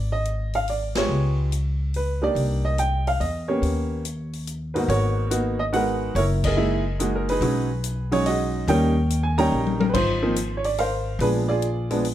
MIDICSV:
0, 0, Header, 1, 4, 480
1, 0, Start_track
1, 0, Tempo, 421053
1, 1249, Time_signature, 3, 2, 24, 8
1, 13844, End_track
2, 0, Start_track
2, 0, Title_t, "Upright piano"
2, 0, Program_c, 0, 0
2, 0, Note_on_c, 0, 74, 83
2, 140, Note_on_c, 0, 75, 85
2, 144, Note_off_c, 0, 74, 0
2, 582, Note_off_c, 0, 75, 0
2, 629, Note_on_c, 0, 77, 92
2, 768, Note_off_c, 0, 77, 0
2, 793, Note_on_c, 0, 74, 75
2, 1081, Note_off_c, 0, 74, 0
2, 1087, Note_on_c, 0, 59, 52
2, 1088, Note_on_c, 0, 56, 59
2, 1088, Note_on_c, 0, 65, 55
2, 1091, Note_on_c, 0, 67, 59
2, 1108, Note_on_c, 0, 73, 84
2, 1547, Note_off_c, 0, 73, 0
2, 1696, Note_off_c, 0, 59, 0
2, 1697, Note_off_c, 0, 56, 0
2, 1697, Note_off_c, 0, 65, 0
2, 1698, Note_off_c, 0, 67, 0
2, 2237, Note_on_c, 0, 71, 71
2, 2525, Note_on_c, 0, 58, 52
2, 2529, Note_on_c, 0, 62, 48
2, 2530, Note_on_c, 0, 67, 59
2, 2534, Note_on_c, 0, 63, 50
2, 2548, Note_on_c, 0, 74, 98
2, 2555, Note_off_c, 0, 71, 0
2, 3018, Note_on_c, 0, 75, 80
2, 3035, Note_off_c, 0, 74, 0
2, 3136, Note_off_c, 0, 58, 0
2, 3138, Note_off_c, 0, 62, 0
2, 3139, Note_off_c, 0, 67, 0
2, 3141, Note_off_c, 0, 63, 0
2, 3163, Note_off_c, 0, 75, 0
2, 3181, Note_on_c, 0, 79, 83
2, 3505, Note_on_c, 0, 77, 89
2, 3508, Note_off_c, 0, 79, 0
2, 3647, Note_off_c, 0, 77, 0
2, 3651, Note_on_c, 0, 75, 72
2, 3969, Note_on_c, 0, 58, 58
2, 3969, Note_on_c, 0, 73, 70
2, 3972, Note_on_c, 0, 61, 53
2, 3973, Note_on_c, 0, 59, 57
2, 3974, Note_on_c, 0, 67, 60
2, 3984, Note_off_c, 0, 75, 0
2, 4579, Note_off_c, 0, 58, 0
2, 4580, Note_off_c, 0, 61, 0
2, 4581, Note_off_c, 0, 59, 0
2, 4581, Note_off_c, 0, 67, 0
2, 5046, Note_off_c, 0, 73, 0
2, 5403, Note_on_c, 0, 71, 66
2, 5415, Note_on_c, 0, 44, 62
2, 5417, Note_on_c, 0, 63, 55
2, 5419, Note_on_c, 0, 58, 58
2, 5422, Note_on_c, 0, 59, 56
2, 5427, Note_on_c, 0, 66, 70
2, 5460, Note_off_c, 0, 71, 0
2, 5573, Note_off_c, 0, 66, 0
2, 5579, Note_on_c, 0, 73, 89
2, 5590, Note_on_c, 0, 66, 62
2, 5595, Note_on_c, 0, 70, 55
2, 6023, Note_off_c, 0, 44, 0
2, 6024, Note_off_c, 0, 63, 0
2, 6025, Note_off_c, 0, 58, 0
2, 6026, Note_off_c, 0, 59, 0
2, 6034, Note_off_c, 0, 66, 0
2, 6046, Note_on_c, 0, 59, 54
2, 6047, Note_on_c, 0, 58, 61
2, 6048, Note_on_c, 0, 63, 57
2, 6051, Note_on_c, 0, 66, 74
2, 6334, Note_off_c, 0, 73, 0
2, 6340, Note_off_c, 0, 59, 0
2, 6341, Note_off_c, 0, 58, 0
2, 6341, Note_off_c, 0, 63, 0
2, 6341, Note_off_c, 0, 70, 0
2, 6343, Note_off_c, 0, 66, 0
2, 6377, Note_on_c, 0, 75, 86
2, 6434, Note_off_c, 0, 75, 0
2, 6525, Note_on_c, 0, 59, 66
2, 6527, Note_on_c, 0, 56, 66
2, 6530, Note_on_c, 0, 63, 60
2, 6530, Note_on_c, 0, 66, 72
2, 6539, Note_on_c, 0, 78, 82
2, 6561, Note_on_c, 0, 71, 62
2, 6570, Note_on_c, 0, 70, 60
2, 6996, Note_off_c, 0, 71, 0
2, 7001, Note_off_c, 0, 70, 0
2, 7010, Note_off_c, 0, 59, 0
2, 7011, Note_off_c, 0, 56, 0
2, 7013, Note_off_c, 0, 63, 0
2, 7013, Note_off_c, 0, 66, 0
2, 7019, Note_on_c, 0, 73, 91
2, 7032, Note_off_c, 0, 78, 0
2, 7039, Note_on_c, 0, 64, 63
2, 7045, Note_on_c, 0, 70, 65
2, 7091, Note_off_c, 0, 73, 0
2, 7351, Note_on_c, 0, 75, 86
2, 7359, Note_off_c, 0, 70, 0
2, 7372, Note_on_c, 0, 68, 66
2, 7377, Note_on_c, 0, 70, 60
2, 7473, Note_off_c, 0, 64, 0
2, 7486, Note_on_c, 0, 56, 61
2, 7488, Note_on_c, 0, 58, 52
2, 7490, Note_on_c, 0, 64, 71
2, 7493, Note_on_c, 0, 63, 54
2, 7780, Note_off_c, 0, 56, 0
2, 7781, Note_off_c, 0, 58, 0
2, 7782, Note_off_c, 0, 64, 0
2, 7783, Note_off_c, 0, 63, 0
2, 7938, Note_off_c, 0, 75, 0
2, 7949, Note_off_c, 0, 68, 0
2, 7952, Note_off_c, 0, 70, 0
2, 7973, Note_on_c, 0, 56, 65
2, 7979, Note_on_c, 0, 58, 55
2, 7981, Note_on_c, 0, 63, 60
2, 7988, Note_on_c, 0, 66, 65
2, 8156, Note_on_c, 0, 70, 70
2, 8307, Note_off_c, 0, 70, 0
2, 8315, Note_on_c, 0, 71, 94
2, 8321, Note_off_c, 0, 63, 0
2, 8338, Note_on_c, 0, 63, 68
2, 8339, Note_on_c, 0, 68, 65
2, 8449, Note_off_c, 0, 56, 0
2, 8453, Note_off_c, 0, 63, 0
2, 8457, Note_off_c, 0, 58, 0
2, 8457, Note_on_c, 0, 54, 62
2, 8462, Note_off_c, 0, 66, 0
2, 8466, Note_on_c, 0, 56, 56
2, 8466, Note_on_c, 0, 61, 57
2, 8471, Note_on_c, 0, 63, 70
2, 8746, Note_off_c, 0, 54, 0
2, 8750, Note_off_c, 0, 56, 0
2, 8750, Note_off_c, 0, 61, 0
2, 8752, Note_off_c, 0, 63, 0
2, 9232, Note_off_c, 0, 68, 0
2, 9251, Note_on_c, 0, 54, 63
2, 9254, Note_on_c, 0, 56, 61
2, 9259, Note_on_c, 0, 61, 64
2, 9260, Note_on_c, 0, 63, 70
2, 9265, Note_on_c, 0, 73, 94
2, 9295, Note_off_c, 0, 71, 0
2, 9417, Note_on_c, 0, 75, 90
2, 9424, Note_off_c, 0, 73, 0
2, 9436, Note_on_c, 0, 68, 64
2, 9438, Note_on_c, 0, 66, 70
2, 9860, Note_off_c, 0, 54, 0
2, 9862, Note_off_c, 0, 56, 0
2, 9862, Note_off_c, 0, 75, 0
2, 9864, Note_off_c, 0, 61, 0
2, 9865, Note_off_c, 0, 63, 0
2, 9872, Note_off_c, 0, 68, 0
2, 9874, Note_off_c, 0, 66, 0
2, 9897, Note_on_c, 0, 55, 71
2, 9903, Note_on_c, 0, 79, 100
2, 9904, Note_on_c, 0, 58, 63
2, 9911, Note_on_c, 0, 61, 65
2, 9911, Note_on_c, 0, 63, 87
2, 9918, Note_on_c, 0, 70, 69
2, 9918, Note_on_c, 0, 73, 71
2, 10186, Note_off_c, 0, 55, 0
2, 10189, Note_off_c, 0, 58, 0
2, 10192, Note_off_c, 0, 61, 0
2, 10192, Note_off_c, 0, 63, 0
2, 10494, Note_off_c, 0, 79, 0
2, 10526, Note_on_c, 0, 80, 81
2, 10662, Note_off_c, 0, 70, 0
2, 10662, Note_off_c, 0, 73, 0
2, 10692, Note_off_c, 0, 80, 0
2, 10693, Note_on_c, 0, 82, 109
2, 10695, Note_on_c, 0, 55, 71
2, 10698, Note_on_c, 0, 58, 69
2, 10706, Note_on_c, 0, 61, 65
2, 10708, Note_on_c, 0, 63, 76
2, 10708, Note_on_c, 0, 73, 80
2, 10710, Note_on_c, 0, 79, 79
2, 11173, Note_on_c, 0, 70, 81
2, 11189, Note_off_c, 0, 82, 0
2, 11221, Note_off_c, 0, 70, 0
2, 11274, Note_on_c, 0, 71, 70
2, 11295, Note_off_c, 0, 73, 0
2, 11297, Note_off_c, 0, 79, 0
2, 11301, Note_off_c, 0, 55, 0
2, 11303, Note_off_c, 0, 58, 0
2, 11307, Note_off_c, 0, 61, 0
2, 11308, Note_off_c, 0, 63, 0
2, 11327, Note_on_c, 0, 72, 99
2, 11330, Note_off_c, 0, 71, 0
2, 11338, Note_on_c, 0, 65, 68
2, 11345, Note_on_c, 0, 63, 64
2, 11640, Note_off_c, 0, 63, 0
2, 11654, Note_on_c, 0, 53, 74
2, 11656, Note_on_c, 0, 58, 68
2, 11657, Note_on_c, 0, 63, 75
2, 11659, Note_on_c, 0, 60, 63
2, 11797, Note_off_c, 0, 53, 0
2, 11798, Note_off_c, 0, 58, 0
2, 11798, Note_off_c, 0, 63, 0
2, 11799, Note_off_c, 0, 60, 0
2, 12006, Note_off_c, 0, 72, 0
2, 12050, Note_on_c, 0, 73, 69
2, 12091, Note_off_c, 0, 65, 0
2, 12133, Note_off_c, 0, 73, 0
2, 12141, Note_on_c, 0, 74, 92
2, 12285, Note_off_c, 0, 74, 0
2, 12297, Note_on_c, 0, 77, 86
2, 12313, Note_on_c, 0, 72, 70
2, 12317, Note_on_c, 0, 70, 63
2, 12741, Note_off_c, 0, 77, 0
2, 12750, Note_off_c, 0, 72, 0
2, 12752, Note_off_c, 0, 70, 0
2, 12776, Note_on_c, 0, 53, 58
2, 12780, Note_on_c, 0, 56, 55
2, 12780, Note_on_c, 0, 71, 92
2, 12783, Note_on_c, 0, 59, 56
2, 12783, Note_on_c, 0, 62, 64
2, 12793, Note_on_c, 0, 68, 65
2, 12851, Note_off_c, 0, 71, 0
2, 13064, Note_off_c, 0, 53, 0
2, 13066, Note_off_c, 0, 56, 0
2, 13067, Note_off_c, 0, 59, 0
2, 13067, Note_off_c, 0, 62, 0
2, 13086, Note_off_c, 0, 68, 0
2, 13092, Note_on_c, 0, 74, 87
2, 13101, Note_on_c, 0, 65, 62
2, 13103, Note_on_c, 0, 68, 64
2, 13572, Note_on_c, 0, 53, 67
2, 13572, Note_on_c, 0, 56, 62
2, 13576, Note_on_c, 0, 59, 64
2, 13576, Note_on_c, 0, 62, 71
2, 13686, Note_off_c, 0, 74, 0
2, 13690, Note_off_c, 0, 65, 0
2, 13692, Note_off_c, 0, 68, 0
2, 13715, Note_off_c, 0, 53, 0
2, 13715, Note_off_c, 0, 56, 0
2, 13717, Note_off_c, 0, 59, 0
2, 13717, Note_off_c, 0, 62, 0
2, 13844, End_track
3, 0, Start_track
3, 0, Title_t, "Upright bass"
3, 0, Program_c, 1, 32
3, 0, Note_on_c, 1, 32, 74
3, 1197, Note_off_c, 1, 32, 0
3, 1239, Note_on_c, 1, 37, 79
3, 2640, Note_off_c, 1, 37, 0
3, 2678, Note_on_c, 1, 36, 74
3, 3600, Note_off_c, 1, 36, 0
3, 3652, Note_on_c, 1, 40, 64
3, 4099, Note_off_c, 1, 40, 0
3, 4125, Note_on_c, 1, 39, 68
3, 5525, Note_off_c, 1, 39, 0
3, 5567, Note_on_c, 1, 32, 86
3, 6966, Note_off_c, 1, 32, 0
3, 7010, Note_on_c, 1, 30, 86
3, 8407, Note_off_c, 1, 30, 0
3, 8445, Note_on_c, 1, 35, 90
3, 9844, Note_off_c, 1, 35, 0
3, 9890, Note_on_c, 1, 39, 87
3, 10806, Note_off_c, 1, 39, 0
3, 10854, Note_on_c, 1, 34, 74
3, 11300, Note_off_c, 1, 34, 0
3, 11334, Note_on_c, 1, 32, 85
3, 12727, Note_off_c, 1, 32, 0
3, 12755, Note_on_c, 1, 34, 93
3, 13844, Note_off_c, 1, 34, 0
3, 13844, End_track
4, 0, Start_track
4, 0, Title_t, "Drums"
4, 290, Note_on_c, 9, 42, 48
4, 404, Note_off_c, 9, 42, 0
4, 610, Note_on_c, 9, 46, 33
4, 724, Note_off_c, 9, 46, 0
4, 772, Note_on_c, 9, 46, 41
4, 886, Note_off_c, 9, 46, 0
4, 1086, Note_on_c, 9, 38, 72
4, 1087, Note_on_c, 9, 51, 61
4, 1200, Note_off_c, 9, 38, 0
4, 1201, Note_off_c, 9, 51, 0
4, 1734, Note_on_c, 9, 42, 48
4, 1848, Note_off_c, 9, 42, 0
4, 2211, Note_on_c, 9, 46, 35
4, 2325, Note_off_c, 9, 46, 0
4, 2692, Note_on_c, 9, 46, 37
4, 2806, Note_off_c, 9, 46, 0
4, 3171, Note_on_c, 9, 42, 45
4, 3285, Note_off_c, 9, 42, 0
4, 3500, Note_on_c, 9, 46, 30
4, 3614, Note_off_c, 9, 46, 0
4, 3657, Note_on_c, 9, 46, 39
4, 3771, Note_off_c, 9, 46, 0
4, 4136, Note_on_c, 9, 46, 37
4, 4250, Note_off_c, 9, 46, 0
4, 4616, Note_on_c, 9, 42, 50
4, 4730, Note_off_c, 9, 42, 0
4, 4941, Note_on_c, 9, 46, 36
4, 5055, Note_off_c, 9, 46, 0
4, 5098, Note_on_c, 9, 42, 47
4, 5212, Note_off_c, 9, 42, 0
4, 5424, Note_on_c, 9, 46, 37
4, 5538, Note_off_c, 9, 46, 0
4, 5581, Note_on_c, 9, 46, 46
4, 5695, Note_off_c, 9, 46, 0
4, 6055, Note_on_c, 9, 42, 61
4, 6169, Note_off_c, 9, 42, 0
4, 6537, Note_on_c, 9, 46, 42
4, 6651, Note_off_c, 9, 46, 0
4, 7021, Note_on_c, 9, 46, 47
4, 7135, Note_off_c, 9, 46, 0
4, 7339, Note_on_c, 9, 36, 81
4, 7339, Note_on_c, 9, 49, 68
4, 7453, Note_off_c, 9, 36, 0
4, 7453, Note_off_c, 9, 49, 0
4, 7980, Note_on_c, 9, 42, 53
4, 8094, Note_off_c, 9, 42, 0
4, 8307, Note_on_c, 9, 46, 41
4, 8421, Note_off_c, 9, 46, 0
4, 8457, Note_on_c, 9, 46, 50
4, 8571, Note_off_c, 9, 46, 0
4, 8934, Note_on_c, 9, 42, 59
4, 9048, Note_off_c, 9, 42, 0
4, 9258, Note_on_c, 9, 46, 41
4, 9372, Note_off_c, 9, 46, 0
4, 9415, Note_on_c, 9, 46, 46
4, 9529, Note_off_c, 9, 46, 0
4, 9895, Note_on_c, 9, 46, 50
4, 10009, Note_off_c, 9, 46, 0
4, 10379, Note_on_c, 9, 42, 56
4, 10493, Note_off_c, 9, 42, 0
4, 10698, Note_on_c, 9, 46, 42
4, 10812, Note_off_c, 9, 46, 0
4, 11018, Note_on_c, 9, 48, 57
4, 11132, Note_off_c, 9, 48, 0
4, 11177, Note_on_c, 9, 48, 92
4, 11291, Note_off_c, 9, 48, 0
4, 11336, Note_on_c, 9, 36, 76
4, 11337, Note_on_c, 9, 49, 73
4, 11450, Note_off_c, 9, 36, 0
4, 11451, Note_off_c, 9, 49, 0
4, 11814, Note_on_c, 9, 42, 60
4, 11928, Note_off_c, 9, 42, 0
4, 12133, Note_on_c, 9, 46, 44
4, 12247, Note_off_c, 9, 46, 0
4, 12293, Note_on_c, 9, 46, 47
4, 12407, Note_off_c, 9, 46, 0
4, 12771, Note_on_c, 9, 46, 50
4, 12885, Note_off_c, 9, 46, 0
4, 13249, Note_on_c, 9, 42, 57
4, 13363, Note_off_c, 9, 42, 0
4, 13572, Note_on_c, 9, 46, 42
4, 13686, Note_off_c, 9, 46, 0
4, 13733, Note_on_c, 9, 46, 50
4, 13844, Note_off_c, 9, 46, 0
4, 13844, End_track
0, 0, End_of_file